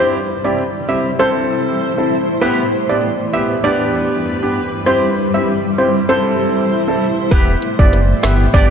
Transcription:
Already playing: C4 E4 G4 C5
0.44 C4 E4 G4 D5
0.88 C4 E4 G4 E5
1.19 C4 E4 A4 C5
1.97 C4 E4 A4
2.41 B3 E4 G4 B4
2.89 B3 E4 G4 D5
3.33 B3 E4 G4 E5
3.64 G3 B3 D4 G4 D5
4.42 B3 D4 G4
4.86 C4 E4 G4 C5
5.34 C4 E4 G4 E5
5.78 C4 E4 G4 C5
6.09 C4 E4 A4 C5
6.87 C4 E4 A4
7.31 E1 B3 E4 G4 B4, kick, closed hi-hat
7.62 closed hi-hat
7.79 F#1 B3 E4 G4 D5, kick
7.93 closed hi-hat
8.23 G1 B3 E4 G4 E5, cross-stick, snare, closed hi-hat
8.54 G1 B3 D4 G4 D5, kick, closed hi-hat

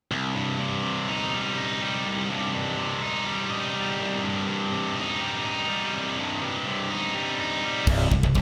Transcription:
0.11 C2
0.36 G2
0.60 G2
0.84 C3
1.08 D#4
1.34 G3
1.57 D#4
1.81 G3
2.06 C2
2.30 G2
2.54 G2
2.77 C3
3.02 D#4
3.26 G3
3.50 D#4
3.74 G3
4.00 C2
4.23 G2
4.47 G2
4.72 C3
4.96 D#4
5.21 G3
5.45 D#4
5.69 G3
5.94 C2
6.19 G2
6.43 G2
6.67 C3
6.91 D#4
7.15 G3
7.40 D#4
7.64 G3
7.87 C1 C2, kick, crash
8.11 C1 C2, kick
8.23 C1 C2, kick
8.34 C1 C2, kick, crash

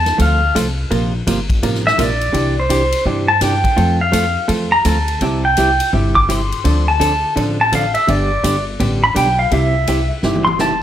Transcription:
Already playing: E2 A5
0.06 snare, ride
0.18 D2 F3 A3 C4 F4 A4 F5, kick, ride
0.55 C2 F3 A3 C4 F4 A4, kick, hi-hat pedal, ride
0.91 A#1 C3 F3 A#3 F4 A#4, kick, ride
1.27 G1 C3 F3 A#3 F4 A#4, kick, hi-hat pedal, ride
1.50 kick, ride
1.63 A1 C3 F3 A#3 F4 A#4, kick, ride
1.75 snare
1.87 E5, snare
1.98 A#1 C3 F3 A#3 F4 A#4, kick, hi-hat pedal, ride
2.02 D5
2.21 ride
2.33 C2 C3 E3 D4 G4, kick, ride
2.60 C5
2.69 C3 E3 D4 G4, kick, hi-hat pedal, ride
2.92 ride
3.06 G2 C3 E3 D4 G4, kick
3.28 A5
3.41 C3 E3 D4 G4 G5, kick, snare, hi-hat pedal, ride
3.64 kick, ride
3.76 F2 F3 A3 C4 F4 A4, kick, ride
4.01 F5
4.12 F3 A3 C4 F4 A4, kick, hi-hat pedal, ride
4.48 E2 F3 A3 C4 F4 A4, kick, ride
4.72 A#5
4.85 D2 F3 A3 C4 F4 A4 A5, kick, hi-hat pedal, ride
5.08 ride
5.21 C2 C3 G3 C4 E4 G4, kick, ride
5.45 G5
5.57 C3 G3 C4 E4 G4, kick, hi-hat pedal, ride
5.80 ride
5.93 G1 C3 G3 C4 E4 G4, kick
6.15 D6, kick
6.29 C3 G3 C4 E4 G4 C6, kick, hi-hat pedal, ride
6.52 ride
6.64 D2 D3 F3 C4 D4 A4, kick, ride
6.88 A5
7.00 D3 F3 C4 D4 A4, kick, hi-hat pedal, ride
7.36 A1 D3 F3 C4 D4 A4, kick, ride
7.61 A5
7.72 D3 F3 C4 D4 A4 F5, kick, hi-hat pedal, ride
7.94 E5, ride
8.07 G1 D3 G3 B3 D4 G4 D5, kick, ride
8.43 G1 D3 G3 B3 D4 G4, kick, hi-hat pedal, ride
8.80 A1 D3 G3 B3 D4 G4, kick, ride
9.04 B5
9.15 B1 D3 G3 B3 D4 G4 G5, kick, hi-hat pedal, ride
9.39 F5
9.51 C2 C3 G3 C4 E4 G4 E5, kick, ride
9.87 C3 G3 C4 E4 G4, kick, hi-hat pedal, ride
10.23 G1 C3 G3 C4 E4 G4, snare
10.35 mid tom
10.45 C6, mid tom
10.59 C3 G3 C4 E4 G4 A5, snare, hi-hat pedal

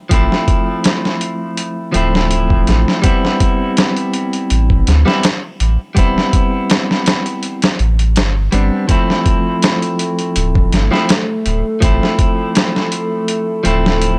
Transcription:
0.09 A1 F3 A3 C4, kick, closed hi-hat
0.13 E4
0.32 snare
0.48 kick, closed hi-hat
0.84 snare, closed hi-hat
1.05 snare
1.21 closed hi-hat
1.57 closed hi-hat
1.92 D1 F3 A3 C4, closed hi-hat
1.97 E4
2.15 snare
2.31 closed hi-hat
2.50 kick
2.67 A1, snare, closed hi-hat
2.88 snare
3.02 G3 B3 C4, kick, closed hi-hat
3.06 E4
3.25 snare
3.40 kick, closed hi-hat
3.77 snare, closed hi-hat
3.97 closed hi-hat
4.14 closed hi-hat
4.33 closed hi-hat
4.50 A1, closed hi-hat
4.70 kick
4.87 D2, snare, closed hi-hat
5.05 G3 B3 C4 E4, snare
5.23 snare, closed hi-hat
5.60 A1, closed hi-hat
5.95 E1 G3 B3 C4, kick, closed hi-hat
5.99 E4
6.18 snare
6.33 kick, closed hi-hat
6.70 snare, closed hi-hat
6.91 snare
7.06 snare, closed hi-hat
7.26 closed hi-hat
7.43 closed hi-hat
7.62 snare, closed hi-hat
7.79 A1, closed hi-hat
7.99 closed hi-hat
8.16 G1, snare, closed hi-hat
8.52 G1 G3 B3 C4 D4, closed hi-hat
8.87 F3 A3 C4 E4 A4, kick, closed hi-hat
9.10 snare
9.26 kick, closed hi-hat
9.62 snare, closed hi-hat
9.82 closed hi-hat
9.99 closed hi-hat
10.19 closed hi-hat
10.36 D1, closed hi-hat
10.55 kick
10.72 G1, snare, closed hi-hat
10.91 F3 A3 C4 E4, snare
11.09 snare, closed hi-hat
11.46 D1, closed hi-hat
11.80 A1 F3 A3 C4 E4, kick, closed hi-hat
12.03 snare
12.19 kick, closed hi-hat
12.55 snare, closed hi-hat
12.76 snare
12.92 closed hi-hat
13.28 closed hi-hat
13.64 D1 F3 A3 C4 E4, closed hi-hat
13.86 snare
14.02 closed hi-hat

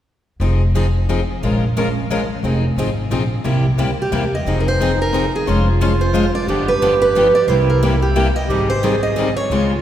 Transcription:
0.40 F1 F3 C4 D#4 G#4
0.75 F3 C4 D#4 G#4
1.09 F3 C4 D#4 G#4
1.42 A#1 F3 G#3 C#4 F4 A#4
1.77 F3 G#3 C#4 F4 A#4
2.10 F3 G#3 C#4 F4 A#4
2.43 F1 F3 C4 D#4 G#4
2.76 G#1 F3 C4 D#4 G#4
3.10 A#1 F3 C4 D#4 G#4
3.44 C2 C3 G3 A#3 E4 G4
3.78 C#2 C3 G3 A#3 E4 G4
4.02 G4
4.12 E2 C3 G3 A#3 E4 G4
4.35 D#5
4.45 F1 F3 C4 D#4 G#4
4.60 A#4
4.68 C5
4.80 F3 C4 D#4 G#4
5.02 A#4
5.13 F3 C4 D#4 G#4
5.36 G#4
5.46 F1 F3 G#3 C#4 F4 C5
5.81 F3 G#3 C#4 F4 C5
6.01 C5
6.13 F3 G#3 C#4 F4 C5
6.35 D5
6.47 G1 D3 F3 B3 D4 G4
6.68 B4
6.82 D3 F3 B3 D4 G4
7.02 B4
7.16 D3 F3 B3 D4 G4
7.35 D5
7.47 C2 C3 G3 A#3 E4 C5
7.51 G4
7.70 A#4
7.83 C3 G3 A#3 E4 G4
8.02 G4
8.15 C3 G3 A#3 E4 G4
8.36 D#5
8.49 G#1 D#3 G3 C4 D#4 G4 G#4
8.70 C5
8.83 D#3 G3 C4 D#4 G#4
9.03 D#5
9.17 D#3 G3 C4 D#4 G#4
9.37 C#5
9.50 C#2 C#3 G#3 C4 F4 G#4

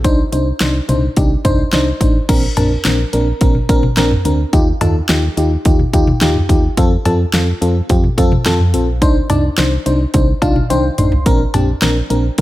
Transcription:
0.04 C2 D4 D#4 C5, kick, closed hi-hat
0.32 C2 D4 D#4 C5, closed hi-hat
0.60 C2 D4 D#4 C5, snare, closed hi-hat
0.89 C2 D4 D#4 C5, closed hi-hat, mid tom
1.17 C2 D4 D#4 G4, kick, closed hi-hat
1.45 C2 D4 D#4 C5, kick, closed hi-hat, mid tom
1.73 C2 D4 D#4 C5, snare, closed hi-hat
2.01 A1 D4 D#4 C5, kick, closed hi-hat
2.29 A#1 C4 D4 A#4, kick, closed hi-hat, crash
2.57 A#1 C4 D4 A#4, closed hi-hat, mid tom, cowbell
2.85 A#1 C4 D4 A#4, snare, closed hi-hat
3.13 A#1 C4 D4 A#4, closed hi-hat
3.41 A#1 C4 D4 A#4, kick, closed hi-hat
3.55 mid tom
3.69 A#1 C4 D4 A#4, kick, closed hi-hat
3.83 mid tom
3.97 A#1 C4 D4 A#4, snare, closed hi-hat
4.11 mid tom
4.25 D2 C4 D4 A#4, closed hi-hat
4.53 D#2 D#4 F4 G4, kick, closed hi-hat
4.81 D#2 D#4 F4 A4, closed hi-hat, mid tom, cowbell
5.09 D#2 D#4 F4 G4, snare, closed hi-hat
5.37 D#2 D#4 F4 G4, closed hi-hat
5.65 D#2 D#4 F4 G4, kick, closed hi-hat
5.79 mid tom
5.93 D#2 D#4 F4 G4, kick, closed hi-hat
6.07 mid tom
6.21 D#2 D#4 F4 G4, snare, closed hi-hat
6.35 mid tom
6.49 D#2 D#4 F4 G4, kick, closed hi-hat
6.77 F2 C4 F4 A4, kick, closed hi-hat
7.05 F2 C4 F4 A4, closed hi-hat, mid tom, cowbell
7.33 F2 C4 F4 A4, snare, closed hi-hat
7.61 F2 C4 F4 A4, closed hi-hat
7.89 F2 C4 F4 G4, kick, closed hi-hat
8.04 mid tom
8.18 F2 C4 F4 A4, kick, closed hi-hat
8.32 mid tom
8.46 F2 C4 F4 A4, snare, closed hi-hat
8.60 mid tom
8.74 A#1 C4 F4 A4, closed hi-hat
9.02 C2 D4 D#4 C5, kick, closed hi-hat
9.30 C2 D4 D#4 D5, closed hi-hat, mid tom, cowbell
9.58 C2 D4 D#4 C5, snare, closed hi-hat
9.86 C2 D4 D#4 C5, closed hi-hat
10.14 C2 D4 D#4 C5, kick, closed hi-hat
10.42 C2 D4 D#4 F4 F5, kick, closed hi-hat, cowbell
10.56 mid tom
10.70 C2 D4 D#4 C5 G5, closed hi-hat, high tom
10.98 A1 D4 D#4 C5 C6, closed hi-hat, mid tom
11.12 floor tom
11.26 A#1 C4 D4 A#4, kick, closed hi-hat
11.54 A#1 C4 D4 G4, closed hi-hat, mid tom, cowbell
11.82 A#1 C4 D4 A#4, snare, closed hi-hat
12.10 A#1 C4 D4 A#4, closed hi-hat
12.38 closed hi-hat

